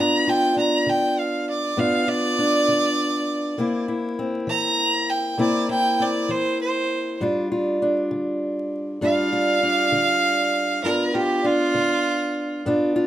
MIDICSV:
0, 0, Header, 1, 3, 480
1, 0, Start_track
1, 0, Tempo, 604230
1, 2844, Time_signature, 12, 3, 24, 8
1, 10382, End_track
2, 0, Start_track
2, 0, Title_t, "Fiddle"
2, 0, Program_c, 0, 110
2, 0, Note_on_c, 0, 82, 99
2, 231, Note_on_c, 0, 79, 96
2, 243, Note_off_c, 0, 82, 0
2, 453, Note_off_c, 0, 79, 0
2, 464, Note_on_c, 0, 82, 92
2, 706, Note_on_c, 0, 79, 84
2, 718, Note_off_c, 0, 82, 0
2, 942, Note_on_c, 0, 77, 73
2, 954, Note_off_c, 0, 79, 0
2, 1168, Note_off_c, 0, 77, 0
2, 1185, Note_on_c, 0, 74, 86
2, 1424, Note_on_c, 0, 77, 94
2, 1436, Note_off_c, 0, 74, 0
2, 1651, Note_on_c, 0, 74, 125
2, 1663, Note_off_c, 0, 77, 0
2, 3054, Note_off_c, 0, 74, 0
2, 3566, Note_on_c, 0, 82, 110
2, 4050, Note_on_c, 0, 79, 83
2, 4062, Note_off_c, 0, 82, 0
2, 4278, Note_off_c, 0, 79, 0
2, 4293, Note_on_c, 0, 74, 82
2, 4520, Note_off_c, 0, 74, 0
2, 4530, Note_on_c, 0, 79, 98
2, 4777, Note_on_c, 0, 74, 83
2, 4789, Note_off_c, 0, 79, 0
2, 5010, Note_on_c, 0, 72, 89
2, 5022, Note_off_c, 0, 74, 0
2, 5238, Note_off_c, 0, 72, 0
2, 5249, Note_on_c, 0, 72, 87
2, 5710, Note_off_c, 0, 72, 0
2, 7180, Note_on_c, 0, 77, 125
2, 8582, Note_off_c, 0, 77, 0
2, 8608, Note_on_c, 0, 70, 87
2, 8847, Note_on_c, 0, 67, 95
2, 8859, Note_off_c, 0, 70, 0
2, 9098, Note_on_c, 0, 65, 112
2, 9110, Note_off_c, 0, 67, 0
2, 10026, Note_off_c, 0, 65, 0
2, 10382, End_track
3, 0, Start_track
3, 0, Title_t, "Steel-string acoustic guitar"
3, 0, Program_c, 1, 25
3, 0, Note_on_c, 1, 43, 72
3, 0, Note_on_c, 1, 59, 54
3, 0, Note_on_c, 1, 62, 55
3, 0, Note_on_c, 1, 65, 64
3, 209, Note_off_c, 1, 65, 0
3, 218, Note_on_c, 1, 65, 63
3, 401, Note_off_c, 1, 43, 0
3, 439, Note_off_c, 1, 62, 0
3, 449, Note_on_c, 1, 62, 60
3, 686, Note_on_c, 1, 50, 62
3, 1118, Note_off_c, 1, 50, 0
3, 1398, Note_off_c, 1, 59, 0
3, 1404, Note_on_c, 1, 43, 68
3, 1407, Note_off_c, 1, 62, 0
3, 1408, Note_on_c, 1, 59, 58
3, 1411, Note_off_c, 1, 65, 0
3, 1415, Note_on_c, 1, 62, 60
3, 1421, Note_on_c, 1, 65, 65
3, 1639, Note_off_c, 1, 65, 0
3, 1649, Note_on_c, 1, 65, 60
3, 1836, Note_off_c, 1, 43, 0
3, 1886, Note_off_c, 1, 62, 0
3, 1896, Note_on_c, 1, 62, 61
3, 2130, Note_on_c, 1, 50, 63
3, 2559, Note_off_c, 1, 50, 0
3, 2815, Note_off_c, 1, 59, 0
3, 2816, Note_off_c, 1, 65, 0
3, 2820, Note_off_c, 1, 62, 0
3, 2842, Note_on_c, 1, 48, 68
3, 2847, Note_on_c, 1, 58, 57
3, 2853, Note_on_c, 1, 60, 58
3, 2859, Note_on_c, 1, 64, 61
3, 3074, Note_off_c, 1, 64, 0
3, 3084, Note_on_c, 1, 64, 59
3, 3274, Note_off_c, 1, 48, 0
3, 3318, Note_off_c, 1, 60, 0
3, 3327, Note_on_c, 1, 60, 61
3, 3551, Note_on_c, 1, 52, 67
3, 3988, Note_off_c, 1, 52, 0
3, 4267, Note_off_c, 1, 58, 0
3, 4271, Note_on_c, 1, 48, 67
3, 4273, Note_off_c, 1, 60, 0
3, 4276, Note_off_c, 1, 64, 0
3, 4277, Note_on_c, 1, 58, 60
3, 4282, Note_on_c, 1, 60, 67
3, 4286, Note_on_c, 1, 64, 70
3, 4511, Note_off_c, 1, 64, 0
3, 4520, Note_on_c, 1, 64, 67
3, 4708, Note_off_c, 1, 48, 0
3, 4756, Note_off_c, 1, 60, 0
3, 4766, Note_on_c, 1, 60, 57
3, 4995, Note_on_c, 1, 52, 72
3, 5430, Note_off_c, 1, 52, 0
3, 5690, Note_off_c, 1, 58, 0
3, 5694, Note_off_c, 1, 60, 0
3, 5720, Note_off_c, 1, 64, 0
3, 5722, Note_on_c, 1, 43, 65
3, 5727, Note_on_c, 1, 55, 58
3, 5732, Note_on_c, 1, 62, 63
3, 5740, Note_on_c, 1, 65, 61
3, 5967, Note_off_c, 1, 65, 0
3, 5971, Note_on_c, 1, 65, 57
3, 6153, Note_off_c, 1, 43, 0
3, 6210, Note_off_c, 1, 62, 0
3, 6213, Note_on_c, 1, 62, 60
3, 6443, Note_on_c, 1, 50, 60
3, 6874, Note_off_c, 1, 50, 0
3, 7159, Note_on_c, 1, 43, 77
3, 7161, Note_off_c, 1, 55, 0
3, 7164, Note_on_c, 1, 55, 66
3, 7165, Note_off_c, 1, 62, 0
3, 7168, Note_on_c, 1, 62, 65
3, 7172, Note_off_c, 1, 65, 0
3, 7175, Note_on_c, 1, 65, 67
3, 7404, Note_off_c, 1, 65, 0
3, 7408, Note_on_c, 1, 65, 72
3, 7593, Note_off_c, 1, 43, 0
3, 7647, Note_off_c, 1, 62, 0
3, 7651, Note_on_c, 1, 62, 61
3, 7880, Note_on_c, 1, 50, 67
3, 8314, Note_off_c, 1, 50, 0
3, 8607, Note_on_c, 1, 43, 61
3, 8611, Note_off_c, 1, 55, 0
3, 8615, Note_on_c, 1, 59, 51
3, 8616, Note_off_c, 1, 62, 0
3, 8620, Note_off_c, 1, 65, 0
3, 8620, Note_on_c, 1, 62, 60
3, 8623, Note_on_c, 1, 65, 58
3, 8853, Note_off_c, 1, 65, 0
3, 8856, Note_on_c, 1, 65, 66
3, 9039, Note_off_c, 1, 43, 0
3, 9087, Note_off_c, 1, 62, 0
3, 9090, Note_on_c, 1, 62, 60
3, 9329, Note_on_c, 1, 50, 67
3, 9761, Note_off_c, 1, 50, 0
3, 10053, Note_on_c, 1, 43, 66
3, 10055, Note_off_c, 1, 59, 0
3, 10058, Note_on_c, 1, 59, 61
3, 10060, Note_off_c, 1, 62, 0
3, 10063, Note_on_c, 1, 62, 66
3, 10067, Note_off_c, 1, 65, 0
3, 10071, Note_on_c, 1, 65, 67
3, 10284, Note_off_c, 1, 65, 0
3, 10293, Note_on_c, 1, 65, 73
3, 10382, Note_off_c, 1, 43, 0
3, 10382, Note_off_c, 1, 59, 0
3, 10382, Note_off_c, 1, 62, 0
3, 10382, Note_off_c, 1, 65, 0
3, 10382, End_track
0, 0, End_of_file